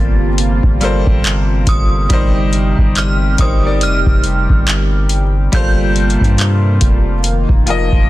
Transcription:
0.00 0.61 G1 loud
0.00 5.49 C3 medium
0.00 0.27 G3 loud
0.00 2.06 G3 medium
0.00 2.07 A#3 medium
0.00 0.27 F4 medium
0.00 2.07 F4 medium
0.00 0.28 A4 medium
0.00 0.28 A#4 medium
0.00 0.29 C5 loud
0.00 0.78 A6 loud
0.38 closed hi-hat medium
0.63 1.05 G1 medium
0.63 kick medium
0.81 2.01 G3 medium
0.81 2.02 F4 medium
0.81 2.02 A4 medium
0.81 2.03 A#4 medium
0.81 2.03 C5 loud
0.81 closed hi-hat medium
1.07 1.65 G1 loud
1.07 kick medium
1.24 clap loud
1.24 closed hi-hat medium
1.67 2.08 G1 loud
1.67 2.92 D#6 medium
1.67 kick loud
1.67 closed hi-hat medium
2.09 2.75 G1 loud
2.09 3.30 G3 loud
2.09 5.49 G3 medium
2.09 3.30 D#4 medium
2.09 5.49 G4 medium
2.09 3.31 A#4 medium
2.09 3.32 C5 loud
2.09 kick loud
2.09 closed hi-hat medium
2.53 closed hi-hat medium
2.78 3.36 G1 loud
2.78 kick medium
2.95 3.41 F6 medium
2.95 clap loud
2.95 closed hi-hat medium
3.38 3.83 G1 loud
3.38 3.61 G3 medium
3.38 3.62 D#4 medium
3.38 3.62 A#4 medium
3.38 3.63 C5 medium
3.38 3.84 D#6 medium
3.38 kick medium
3.38 closed hi-hat medium
3.63 5.19 G3 medium
3.63 5.20 D#4 medium
3.63 5.20 A#4 medium
3.63 5.21 D5 medium
3.81 4.05 F1 loud
3.81 5.59 F6 loud
3.81 closed hi-hat medium
4.06 4.47 F1 loud
4.06 kick medium
4.24 closed hi-hat medium
4.50 5.49 G1 loud
4.50 kick medium
4.67 clap loud
4.67 closed hi-hat medium
5.09 closed hi-hat medium
5.52 6.18 G1 loud
5.52 7.23 C3 medium
5.52 7.13 G3 loud
5.52 7.23 G3 medium
5.52 7.23 A#3 medium
5.52 8.10 F4 medium
5.52 7.13 F4 medium
5.52 7.14 A4 loud
5.52 7.14 A#4 medium
5.52 7.21 G6 loud
5.52 kick loud
5.52 closed hi-hat medium
5.56 7.15 C5 loud
5.96 closed hi-hat soft
6.10 closed hi-hat soft
6.21 6.79 G2 loud
6.21 kick medium
6.21 closed hi-hat soft
6.38 clap loud
6.38 closed hi-hat medium
6.81 7.46 F1 loud
6.81 kick medium
6.81 closed hi-hat medium
7.24 8.10 D#3 medium
7.24 8.10 A#3 medium
7.24 closed hi-hat medium
7.49 7.90 F1 loud
7.49 kick medium
7.66 8.10 F3 medium
7.66 8.10 F4 medium
7.66 8.10 A#4 medium
7.66 8.10 D#5 loud
7.66 closed hi-hat medium
7.92 8.10 F1 loud
7.92 kick medium

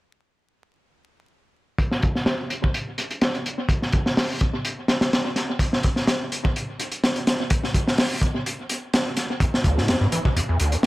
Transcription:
1.79 kick loud
1.79 closed hi-hat medium
1.92 snare soft
2.02 kick medium
2.02 closed hi-hat medium
2.15 snare soft
2.26 snare loud
2.26 closed hi-hat medium
2.50 closed hi-hat medium
2.64 kick medium
2.74 closed hi-hat medium
2.98 closed hi-hat medium
3.11 closed hi-hat soft
3.21 snare loud
3.21 closed hi-hat medium
3.35 closed hi-hat soft
3.46 closed hi-hat medium
3.69 kick medium
3.69 closed hi-hat medium
3.82 snare soft
3.92 kick medium
3.92 closed hi-hat medium
4.06 snare soft
4.17 snare loud
4.17 open hi-hat medium
4.41 kick medium
4.41 closed hi-hat medium
4.65 closed hi-hat medium
4.88 snare medium
4.88 closed hi-hat medium
5.01 snare loud
5.01 closed hi-hat medium
5.13 snare loud
5.13 closed hi-hat medium
5.36 snare soft
5.36 closed hi-hat medium
5.59 kick medium
5.59 closed hi-hat medium
5.73 snare soft
5.83 kick medium
5.83 closed hi-hat medium
5.96 snare soft
6.07 snare loud
6.07 closed hi-hat medium
6.32 closed hi-hat medium
6.45 kick medium
6.56 closed hi-hat medium
6.80 closed hi-hat medium
6.92 closed hi-hat soft
7.04 snare loud
7.04 closed hi-hat medium
7.16 closed hi-hat soft
7.27 snare medium
7.27 closed hi-hat medium
7.50 kick loud
7.50 closed hi-hat medium
7.64 snare soft
7.74 kick medium
7.74 closed hi-hat medium
7.87 snare medium
7.98 snare loud
7.98 open hi-hat medium
8.22 kick medium
8.22 closed hi-hat medium
8.46 closed hi-hat medium
8.70 closed hi-hat medium
8.94 snare loud
8.94 closed hi-hat medium
9.17 snare soft
9.17 closed hi-hat medium
9.40 9.45 E2 medium
9.40 kick loud
9.40 closed hi-hat medium
9.54 snare medium
9.64 9.79 D2 medium
9.64 kick medium
9.64 closed hi-hat medium
9.78 9.90 A2 medium
9.78 snare soft
9.88 9.96 E2 medium
9.88 snare loud
9.88 closed hi-hat medium
10.01 10.07 G2 loud
10.12 10.19 E3 medium
10.12 closed hi-hat medium
10.25 10.29 B2 medium
10.25 kick medium
10.36 10.41 E2 medium
10.36 closed hi-hat medium
10.49 10.58 E2 medium
10.60 10.75 D2 medium
10.60 closed hi-hat medium
10.72 10.77 E2 loud
10.72 closed hi-hat soft

